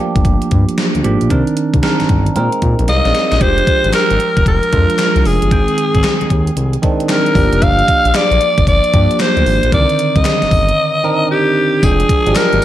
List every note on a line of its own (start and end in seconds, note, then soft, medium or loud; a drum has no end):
0.00 1.03 F3 medium
0.00 1.32 A3 medium
0.00 1.04 A#3 medium
0.00 1.04 D4 medium
0.00 1.05 G4 loud
0.16 0.23 G1 medium
0.16 kick loud
0.16 closed hi-hat medium
0.25 0.38 G1 medium
0.25 kick medium
0.25 closed hi-hat medium
0.42 closed hi-hat medium
0.51 0.65 G2 medium
0.51 kick medium
0.51 closed hi-hat medium
0.69 closed hi-hat medium
0.78 snare loud
0.78 closed hi-hat medium
0.95 1.02 D2 medium
0.95 closed hi-hat soft
1.03 1.17 G#1 medium
1.03 1.29 F3 medium
1.03 1.29 A#3 medium
1.03 1.29 D4 medium
1.03 1.30 G4 medium
1.03 closed hi-hat medium
1.21 1.29 A#1 medium
1.21 closed hi-hat medium
1.30 1.43 C2 loud
1.30 1.80 D#3 medium
1.30 1.81 C4 medium
1.30 1.81 D4 medium
1.30 1.81 A#4 medium
1.30 kick loud
1.30 closed hi-hat medium
1.47 closed hi-hat medium
1.57 closed hi-hat medium
1.74 1.81 C2 medium
1.74 kick medium
1.74 closed hi-hat medium
1.82 2.35 D#3 medium
1.82 2.35 C4 medium
1.82 2.36 D4 medium
1.82 2.35 A#4 medium
1.82 snare loud
1.82 closed hi-hat medium
2.00 2.04 G1 soft
2.00 snare medium
2.00 closed hi-hat soft
2.09 2.30 G1 loud
2.09 kick medium
2.09 closed hi-hat medium
2.26 closed hi-hat soft
2.35 2.49 A#2 loud
2.35 3.11 G#3 medium
2.35 3.11 C4 medium
2.35 3.12 D#4 medium
2.35 2.89 A#4 medium
2.35 closed hi-hat medium
2.52 closed hi-hat soft
2.62 2.75 A#2 medium
2.62 kick medium
2.62 closed hi-hat medium
2.79 2.86 A#1 loud
2.79 closed hi-hat medium
2.88 3.02 C2 medium
2.88 3.05 C5 medium
2.88 3.43 D#5 loud
2.88 3.04 F5 medium
2.88 snare medium
2.88 closed hi-hat medium
3.05 3.13 A#1 medium
3.05 3.31 G#4 medium
3.05 3.30 D5 medium
3.05 snare medium
3.05 closed hi-hat soft
3.15 snare medium
3.15 closed hi-hat medium
3.32 3.39 A#1 medium
3.32 3.40 G4 medium
3.32 3.57 C5 medium
3.32 snare medium
3.32 closed hi-hat medium
3.40 3.61 F1 loud
3.40 4.41 F3 medium
3.40 3.49 G3 medium
3.40 4.42 D4 medium
3.40 4.42 G4 medium
3.40 3.94 C5 loud
3.40 kick loud
3.40 closed hi-hat medium
3.47 4.45 G#3 medium
3.58 closed hi-hat medium
3.67 kick medium
3.67 closed hi-hat medium
3.84 3.92 G#1 medium
3.84 closed hi-hat medium
3.93 4.43 A#4 loud
3.93 snare loud
3.93 clap medium
3.93 closed hi-hat medium
4.11 4.18 G#1 medium
4.11 closed hi-hat medium
4.20 closed hi-hat medium
4.37 4.44 F1 loud
4.37 kick loud
4.37 closed hi-hat medium
4.46 4.59 F1 medium
4.46 5.28 A#4 loud
4.46 kick medium
4.46 closed hi-hat medium
4.63 closed hi-hat soft
4.72 4.86 F2 medium
4.72 5.48 F3 medium
4.72 5.48 G#3 medium
4.72 5.48 D4 medium
4.72 5.48 F4 medium
4.72 kick medium
4.72 closed hi-hat medium
4.90 closed hi-hat medium
4.98 snare loud
4.98 clap medium
4.98 closed hi-hat medium
5.16 5.23 C2 medium
5.16 closed hi-hat soft
5.25 5.38 F1 loud
5.25 6.84 G#4 loud
5.25 open hi-hat medium
5.42 5.50 G1 medium
5.42 closed hi-hat medium
5.51 5.64 G#1 loud
5.51 6.52 D#3 medium
5.51 6.52 G#3 medium
5.51 6.52 C4 medium
5.51 6.53 G5 medium
5.51 kick loud
5.51 closed hi-hat medium
5.68 closed hi-hat medium
5.78 closed hi-hat medium
5.95 6.02 G#1 medium
5.95 kick medium
5.95 closed hi-hat medium
6.03 snare loud
6.03 clap medium
6.03 closed hi-hat medium
6.21 6.25 D#2 soft
6.21 closed hi-hat medium
6.30 6.51 D#2 medium
6.30 kick medium
6.30 closed hi-hat medium
6.47 closed hi-hat medium
6.57 6.77 C2 medium
6.57 closed hi-hat medium
6.73 closed hi-hat soft
6.82 7.35 D#3 loud
6.82 7.36 G#3 medium
6.82 7.36 C4 medium
6.82 7.34 D4 loud
6.82 kick medium
6.82 closed hi-hat medium
7.00 closed hi-hat medium
7.09 7.65 A#4 loud
7.09 snare loud
7.09 clap medium
7.09 closed hi-hat medium
7.26 closed hi-hat medium
7.35 7.49 G1 loud
7.35 8.36 F3 medium
7.35 8.36 A#3 medium
7.35 8.36 D4 medium
7.35 8.37 G4 medium
7.35 kick loud
7.35 open hi-hat medium
7.52 7.60 F1 medium
7.52 closed hi-hat medium
7.62 7.82 G1 loud
7.62 8.18 F5 loud
7.62 kick loud
7.62 closed hi-hat medium
7.79 closed hi-hat medium
7.88 kick loud
7.88 closed hi-hat medium
8.05 8.12 A#1 medium
8.05 closed hi-hat medium
8.14 8.68 D5 loud
8.14 snare loud
8.14 clap medium
8.14 closed hi-hat medium
8.31 8.38 A#1 medium
8.31 closed hi-hat soft
8.41 closed hi-hat medium
8.58 8.65 G1 medium
8.58 kick loud
8.58 closed hi-hat medium
8.67 8.80 G1 loud
8.67 9.23 D5 loud
8.67 kick loud
8.67 closed hi-hat medium
8.84 closed hi-hat medium
8.93 9.07 G2 loud
8.93 9.69 F3 medium
8.93 9.69 A#3 medium
8.93 9.69 D4 medium
8.93 9.69 G4 medium
8.93 kick medium
8.93 closed hi-hat medium
9.11 closed hi-hat medium
9.20 9.73 C5 loud
9.20 snare loud
9.20 clap medium
9.20 closed hi-hat medium
9.37 9.44 D2 loud
9.37 closed hi-hat soft
9.46 9.59 G#1 medium
9.46 open hi-hat medium
9.63 9.70 A#1 medium
9.63 closed hi-hat medium
9.72 9.86 C2 loud
9.72 10.73 D3 medium
9.72 10.73 D#3 medium
9.72 10.73 C4 medium
9.72 10.73 A#4 medium
9.72 10.18 D5 loud
9.72 kick loud
9.72 closed hi-hat medium
9.89 closed hi-hat medium
9.99 closed hi-hat medium
10.16 10.23 C2 medium
10.16 11.30 D#5 medium
10.16 kick loud
10.16 closed hi-hat medium
10.25 snare loud
10.25 clap medium
10.25 closed hi-hat medium
10.42 10.46 G1 soft
10.42 snare medium
10.42 closed hi-hat soft
10.51 10.72 G1 medium
10.51 kick medium
10.51 open hi-hat medium
10.68 closed hi-hat medium
11.04 11.79 D#3 medium
11.04 11.80 C4 medium
11.04 11.80 D4 medium
11.04 11.80 A#4 loud
11.31 11.86 G4 medium
11.82 12.03 F1 loud
11.82 12.23 F3 medium
11.82 12.23 G#3 medium
11.82 12.23 D4 medium
11.82 12.38 G#4 loud
11.82 12.24 G5 medium
11.82 kick loud
11.82 closed hi-hat medium
11.82 tambourine medium
12.00 closed hi-hat medium
12.09 kick loud
12.09 closed hi-hat medium
12.26 12.34 G#1 medium
12.26 12.65 F3 medium
12.26 12.65 G#3 medium
12.26 12.65 D4 medium
12.26 12.65 G4 medium
12.26 closed hi-hat medium
12.35 12.65 A#4 loud
12.35 snare loud
12.35 clap medium
12.35 closed hi-hat medium
12.35 tambourine medium
12.53 12.60 G#1 medium
12.53 closed hi-hat soft